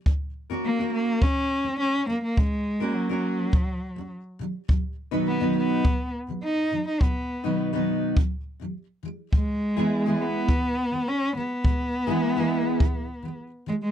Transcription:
<<
  \new Staff \with { instrumentName = "Cello" } { \time 4/4 \key b \major \tempo 4 = 104 r4 ais8 ais8 cis'4 cis'8 ais16 ais16 | gis4 fis2 r4 | r4 b8 b4 r8 dis'8. dis'16 | b4 r2. |
gis4. b4. cis'8 b8~ | b2. r8 gis16 gis16 | }
  \new Staff \with { instrumentName = "Steel-string acoustic guitar" } { \clef bass \time 4/4 \key b \major <ais cis'>8 r16 <ais cis' fis' ais'>8 <ais cis' fis' ais'>8. <ais cis'>8 r16 <ais cis'>8 r16 <ais cis'>8 | <ais cis'>8 r16 <ais cis' fis' ais'>8 <ais cis' fis' ais'>8. <ais cis'>8 r16 <ais cis'>8 r16 <b, dis fis>8 | <b, dis fis>8 r16 <b, dis fis b dis' b'>8 <b, dis fis b dis' b'>8. <b, dis>8 r16 <b, dis fis>8 r16 <b, dis fis>8 | <b, dis fis>8 r16 <b, dis fis b dis' b'>8 <b, dis fis b dis' b'>8. <b, dis fis>8 r16 <b, dis fis>8 r16 <e gis>8 |
<e gis>8 r16 <e gis b e' gis'>8 <e gis b e' gis'>8. <e gis>8 r16 <e gis>8 r16 <e gis>8 | <e gis>8 r16 <e gis b e' gis'>8 <e gis b e' gis'>8. <e gis>8 r16 <e gis>8 r16 <e gis>8 | }
  \new DrumStaff \with { instrumentName = "Drums" } \drummode { \time 4/4 bd4 r4 bd4 r4 | bd4 r4 bd4 r4 | bd4 r4 bd4 r4 | bd4 r4 bd4 r4 |
bd4 r4 bd4 r4 | bd4 r4 bd4 r4 | }
>>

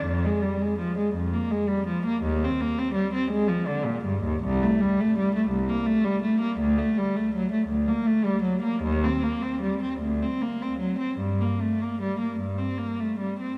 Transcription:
\new Staff \with { instrumentName = "Cello" } { \clef bass \time 6/8 \key c \minor \tempo 4. = 54 f,16 aes16 g16 aes16 f16 aes16 f,16 bes16 aes16 g16 f16 bes16 | ees,16 c'16 bes16 c'16 g16 c'16 aes16 f16 d16 bes,16 g,16 ees,16 | \key g \minor c,16 a16 g16 a16 g16 a16 c,16 bes16 a16 g16 a16 bes16 | d,16 a16 g16 a16 fis16 a16 d,16 bes16 a16 g16 fis16 bes16 |
ees,16 c'16 bes16 c'16 g16 c'16 d,16 c'16 bes16 c'16 fis16 c'16 | g,16 bes16 a16 bes16 g16 bes16 g,16 c'16 bes16 a16 g16 c'16 | }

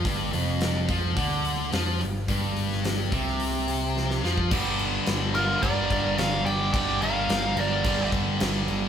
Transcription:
<<
  \new Staff \with { instrumentName = "Lead electric guitar" } { \time 4/4 \key g \minor \tempo 4 = 108 r1 | r1 | r4. bes'8 d''4 f''8 g''8 | g''8 f''4 d''4 r4. | }
  \new Staff \with { instrumentName = "Lead electric guitar" } { \time 4/4 \key g \minor r1 | r1 | r4. f'8 bes'4 bes'8 d''8 | d''8 bes'4 bes'4 r4. | }
  \new Staff \with { instrumentName = "Distorted electric guitar" } { \clef bass \time 4/4 \key g \minor g,8 f,4 f8 d4 f8 g,8 | g,4. c2 f8 | <g, d g>1 | <g, d g>1 | }
  \new Staff \with { instrumentName = "Overdriven electric guitar" } { \clef bass \time 4/4 \key g \minor g,8 f,4 f8 d4 f8 g,8 | g,4. c2 f8 | <g, d g>2 <g, d g>2 | <g, d g>2 <g, d g>2 | }
  \new Staff \with { instrumentName = "Picked electric bass" } { \clef bass \time 4/4 \key g \minor g,,8 f,,4 f,8 d,4 f,8 g,,8 | g,,4. c,2 f,8 | g,,4 g,,4 g,,8 g,,8 g,,8 g,,8 | g,,8 g,,8 g,,8 g,,8 g,,8 g,8 g,,8 g,,8 | }
  \new DrumStaff \with { instrumentName = "Drums" } \drummode { \time 4/4 <hho bd>8 hho8 <hho sn>8 <hho bd>8 <hho bd>8 hho8 <hho sn>8 hho8 | <hho bd>8 hho16 sn16 <hho sn>8 <hho bd>16 sn16 hho8 hho8 sn16 sn16 sn16 bd16 | <cymc bd>8 cymc8 <cymc sn>8 cymc8 <cymc bd>8 <cymc bd>8 <cymc sn>8 cymc8 | <cymc bd>8 cymc8 <cymc sn>8 cymc8 <cymc bd>8 <cymc bd>8 <cymc sn>8 cymc8 | }
>>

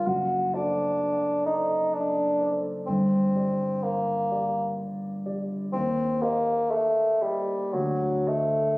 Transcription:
<<
  \new Staff \with { instrumentName = "Grand piano" } { \time 3/4 \key g \minor \tempo 4 = 63 fis,,8 <a' c'' d''>4 <a' c'' d''>4 <a' c'' d''>8 | g,,8 <g' d''>4 <g' d''>4 <g' d''>8 | ees,8 <g' c'' ees''>4 <g' c'' ees''>8 d,8 <a' c'' ees''>8 | }
  \new Staff \with { instrumentName = "Bassoon" } { \time 3/4 \key g \minor fis'8 d'4 ees'8 d'8 r8 | c'4 bes4 r4 | c'8 bes8 a8 g8 fis8 a8 | }
>>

